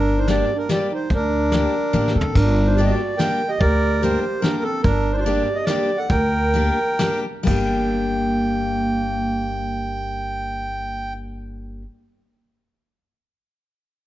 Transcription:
Already playing: upright bass G1, clarinet D4, accordion D4 A#4
0.18 clarinet D#4, accordion C5
0.28 steel-string acoustic guitar G3 A#3 D4 G4, clarinet G4, accordion D5, snare, closed hi-hat
0.55 clarinet D4, accordion A#4
0.69 steel-string acoustic guitar G3 A#3 D4 G4, clarinet G4, accordion D5, snare, closed hi-hat
0.91 clarinet D#4, accordion C5
1.10 upright bass D2, clarinet D4, accordion D4, kick, closed hi-hat
1.14 accordion A#4
1.52 steel-string acoustic guitar G3 A#3 D4 G4, snare, closed hi-hat
1.93 upright bass A1, steel-string acoustic guitar G3 A#3 D4 G4, high tom
2.08 snare
2.15 upright bass G1, clarinet C4, accordion A4
2.21 floor tom
2.34 upright bass G1, clarinet D4, accordion D4 A#4, kick, crash
2.66 clarinet D#4, accordion C5
2.75 steel-string acoustic guitar G3, clarinet G4, accordion D5, closed hi-hat
2.79 steel-string acoustic guitar A#3 D4 G4
2.84 clarinet G4, accordion D#5
2.90 clarinet F#4, accordion D5
3.17 steel-string acoustic guitar G3 A#3 D4, clarinet A#4, accordion G5, snare, closed hi-hat
3.21 steel-string acoustic guitar G4
3.49 clarinet G4, accordion D#5
3.59 upright bass D2, clarinet G4, accordion A#4 D5, kick, closed hi-hat
4.01 steel-string acoustic guitar G3 A#3 D4 G4, clarinet G4, accordion C5, closed hi-hat
4.41 steel-string acoustic guitar G3 A#3 D4 G4, clarinet D4, accordion A#4, snare, closed hi-hat
4.63 clarinet C4, accordion A4
4.83 upright bass G1, clarinet D4, accordion D4 A#4, kick, closed hi-hat
5.13 clarinet D#4, accordion C5
5.17 clarinet D#4 F#4, accordion C5 D5
5.24 steel-string acoustic guitar G3 A#3 D4, clarinet G4, accordion D5, closed hi-hat
5.28 steel-string acoustic guitar G4
5.55 clarinet G4, accordion D#5
5.64 steel-string acoustic guitar G3, clarinet G4, accordion D5, snare, closed hi-hat
5.68 steel-string acoustic guitar A#3 D4 G4
5.98 clarinet A4, accordion F#5
6.09 upright bass D2, clarinet A#4, accordion A#4 G5, kick, closed hi-hat
6.53 steel-string acoustic guitar G3 A#3 D4 G4, closed hi-hat
6.99 steel-string acoustic guitar G3 A#3 D4 G4, snare, closed hi-hat
7.43 upright bass G1, steel-string acoustic guitar G3 A#3, accordion G5, kick, crash
7.48 clarinet A#3, steel-string acoustic guitar D4 G4

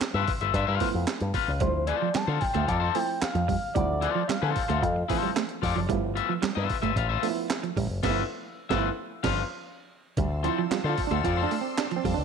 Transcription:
Already playing: clav F3 A3 B3 E4
0.01 muted picked electric bass stroke, snare, clap, closed hi-hat
0.14 picked electric bass G2, clean electric guitar F4 B4 E5
0.28 kick, open hi-hat
0.41 picked electric bass G1, clean electric guitar F4 B4 E5, closed hi-hat
0.54 picked electric bass G2, clean electric guitar F4 B4 E5, kick, closed hi-hat
0.67 picked electric bass G2, clean electric guitar F4 B4 F5
0.80 clav F3 A3 B3 E4, kick, open hi-hat
0.94 picked electric bass F2
1.07 snare, clap, closed hi-hat
1.21 picked electric bass G2, closed hi-hat
1.34 clean electric guitar F4 B4 F5, kick, open hi-hat
1.48 picked electric bass C#2
1.60 picked electric bass D2, clav E3 A3 C4 E4, clean electric guitar G3, analog synth lead C5, kick, closed hi-hat
1.68 clav F3
1.87 clean electric guitar F4 A4 C5, analog synth lead D5, muted clean electric guitar stroke, closed hi-hat
2.02 clean electric guitar F3
2.14 clean electric guitar G3, analog synth lead A5, muted picked electric bass stroke, snare, clap, closed hi-hat
2.27 picked electric bass D3, clean electric guitar F4 A4 C5, muted clean electric guitar stroke
2.40 analog synth lead G5, kick, open hi-hat
2.54 picked electric bass D2, clean electric guitar A3 F4 A4 C5, closed hi-hat
2.67 picked electric bass F2, clean electric guitar F4 A4 D5, analog synth lead A5, kick, closed hi-hat
2.80 clean electric guitar F4 A4 C5
2.95 clav F3 A3 C4 E4, clean electric guitar A3, analog synth lead G5, open hi-hat
3.21 analog synth lead F5, muted clean electric guitar stroke, muted picked electric bass stroke, snare, clap, closed hi-hat
3.35 picked electric bass F2, clean electric guitar F3, closed hi-hat
3.48 clean electric guitar G3, analog synth lead F5, kick, open hi-hat
3.75 picked electric bass D2, clav F3 A3 C4 E4, clean electric guitar G3, analog synth lead D5, kick, closed hi-hat
4.01 clean electric guitar F4 A4 C5, analog synth lead D5, muted clean electric guitar stroke, closed hi-hat
4.15 clean electric guitar F3
4.28 clean electric guitar G3, analog synth lead F5, muted picked electric bass stroke, snare, clap, closed hi-hat
4.42 picked electric bass D3, clean electric guitar F4 A4 C5
4.56 muted clean electric guitar stroke, kick, open hi-hat
4.68 picked electric bass D2, clean electric guitar A3 F4 A4 C5, closed hi-hat
4.82 picked electric bass F2, clean electric guitar F3, kick, closed hi-hat
4.96 muted clean electric guitar stroke
5.08 clav E3 F3 A3 C4, clean electric guitar F4 A4 C5, kick, open hi-hat
5.23 clean electric guitar G3
5.36 clean electric guitar A3, snare, clap, closed hi-hat
5.49 closed hi-hat
5.62 picked electric bass F2, clean electric guitar F4 A4 D5, muted clean electric guitar stroke, kick, open hi-hat
5.76 picked electric bass F#1, clean electric guitar F3
5.89 picked electric bass G1, clav F3 A3 B3 E4, clean electric guitar G3, kick, closed hi-hat
6.15 clean electric guitar F4 B4 E5, muted clean electric guitar stroke, closed hi-hat
6.29 clean electric guitar F3
6.42 clean electric guitar G3, muted picked electric bass stroke, snare, clap, closed hi-hat
6.55 picked electric bass G2, clean electric guitar F4 B4 E5, muted clean electric guitar stroke
6.70 kick, open hi-hat
6.82 picked electric bass G1, clean electric guitar A3 F4 B4 E5, closed hi-hat
6.96 picked electric bass A1, clean electric guitar F4 B4 F5, kick, closed hi-hat
7.09 clean electric guitar F4 B4 E5
7.23 clav F3 A3 B3 D4, clean electric guitar A3, open hi-hat
7.30 clav E4
7.50 muted clean electric guitar stroke, snare, clap, closed hi-hat
7.63 clean electric guitar F3, closed hi-hat
7.77 picked electric bass A1, clean electric guitar G3, kick, open hi-hat
7.90 picked electric bass F#1
8.03 picked electric bass G1, clav F3 A3 B3, clean electric guitar F4 B4 E5, kick, snare, crash
8.10 clav E4
8.69 picked electric bass G1, clav F3 A3 B3, clean electric guitar F4 B4 E5, kick, snare
8.78 clav E4
9.23 picked electric bass G1, clav F3 D4, clean electric guitar F4 B4 F5, kick, snare, crash
10.17 picked electric bass D2, clean electric guitar G3, string machine D5 A5 C6 E6, kick, closed hi-hat
10.43 clav F3 C4 E4, clean electric guitar F4 A4 C5, muted clean electric guitar stroke, closed hi-hat
10.58 clean electric guitar F3
10.71 clean electric guitar G3, clav F4, muted picked electric bass stroke, snare, clap, closed hi-hat
10.84 picked electric bass D3, clean electric guitar F4 A4 C5, muted clean electric guitar stroke
10.89 clav F4
10.98 kick, open hi-hat
11.07 picked electric bass D2, clav D4, clean electric guitar C5
11.11 clean electric guitar A3 F4 A4, closed hi-hat
11.24 picked electric bass F2, clean electric guitar F4 A4 D5, clav F4, kick, closed hi-hat
11.37 clean electric guitar F4 A4 C5
11.43 clav D4
11.51 clean electric guitar A3, open hi-hat
11.61 clav C4
11.78 clav D4, muted clean electric guitar stroke, snare, clap, closed hi-hat
11.91 clean electric guitar F3, closed hi-hat
11.96 clav C4
12.05 picked electric bass F2, clean electric guitar G3, kick, open hi-hat
12.14 picked electric bass C#2, clav D4

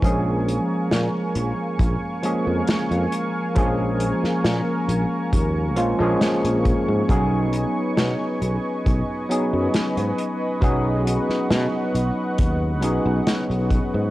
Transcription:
Already playing: analog synth pad G#5 C#6
0.02 fretless electric bass A#1, tine electric piano F3 G#3 A#3 C#4 G#4, analog synth pad A#4 F5, kick, closed hi-hat
0.48 closed hi-hat
0.91 fretless electric bass A#2, snare, closed hi-hat
1.35 fretless electric bass A#1, closed hi-hat
1.79 fretless electric bass A#1, kick, closed hi-hat
2.23 tine electric piano F3 G#3 A#3 C#4 G#4, closed hi-hat
2.47 fretless electric bass F2
2.68 snare, closed hi-hat
2.91 fretless electric bass F2, closed hi-hat
3.12 closed hi-hat
3.55 fretless electric bass A#1, tine electric piano F3 G#3 A#3 C#4 G#4, kick, closed hi-hat
4.00 closed hi-hat
4.23 muted fretless electric bass stroke, snare
4.44 fretless electric bass A#2, snare, closed hi-hat
4.88 fretless electric bass A#1, closed hi-hat
5.33 fretless electric bass D#2, kick, closed hi-hat
5.76 fretless electric bass A#1, tine electric piano F3 G#3 A#3 C#4 F4, closed hi-hat
5.99 fretless electric bass A#1, tine electric piano F3 G#3 A#3 C#4 G#4
6.21 snare, closed hi-hat
6.44 fretless electric bass A#1, closed hi-hat
6.65 kick, closed hi-hat
6.88 fretless electric bass G#2
7.08 fretless electric bass B1, tine electric piano F#3 B3 C#4 D#4 G#4, analog synth pad B4 D#5, kick, closed hi-hat
7.53 closed hi-hat
7.97 fretless electric bass B2, snare, closed hi-hat
8.42 fretless electric bass B1, closed hi-hat
8.86 fretless electric bass B1, kick, closed hi-hat
9.29 tine electric piano F#3 B3 C#4 D#4 G#4, closed hi-hat
9.53 fretless electric bass F#2
9.74 snare, closed hi-hat
9.97 fretless electric bass G#2, closed hi-hat
10.18 closed hi-hat
10.61 fretless electric bass B1, tine electric piano F#3 B3 C#4 D#4 G#4, analog synth pad F#5, kick, closed hi-hat
11.07 closed hi-hat
11.29 muted fretless electric bass stroke, snare
11.50 fretless electric bass B2, snare, closed hi-hat
11.95 fretless electric bass B1, closed hi-hat
12.38 fretless electric bass D#2, kick, closed hi-hat
12.81 fretless electric bass B1, tine electric piano F#3 B3 C#4 D#4 G#4, closed hi-hat
13.06 fretless electric bass B1
13.27 snare, closed hi-hat
13.50 fretless electric bass B1, closed hi-hat
13.70 kick, closed hi-hat
13.94 fretless electric bass G#2

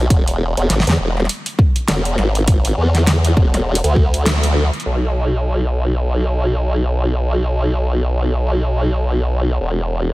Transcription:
0.10 wobble bass E1, kick, closed hi-hat
0.28 closed hi-hat
0.57 wobble bass E1, closed hi-hat
0.70 wobble bass G#1, snare, closed hi-hat
0.80 snare
0.87 wobble bass E2, snare, closed hi-hat
1.00 wobble bass E1
1.17 snare
1.20 snare
1.25 snare
1.29 closed hi-hat
1.46 closed hi-hat
1.59 kick
1.76 closed hi-hat
1.88 wobble bass E1, snare, closed hi-hat
2.05 closed hi-hat
2.18 wobble bass G#1, snare
2.35 closed hi-hat
2.48 kick, closed hi-hat
2.65 closed hi-hat
2.78 wobble bass E2
2.95 snare, closed hi-hat
3.07 snare, closed hi-hat
3.25 closed hi-hat
3.37 wobble bass E1, kick
3.54 snare, closed hi-hat
3.75 closed hi-hat
3.84 wobble bass D2, closed hi-hat
3.96 kick
4.14 closed hi-hat
4.26 snare, closed hi-hat
4.43 closed hi-hat
4.73 closed hi-hat
4.80 closed hi-hat
4.86 wobble bass B1, closed hi-hat, crash
4.95 closed hi-hat
9.61 wobble bass E1

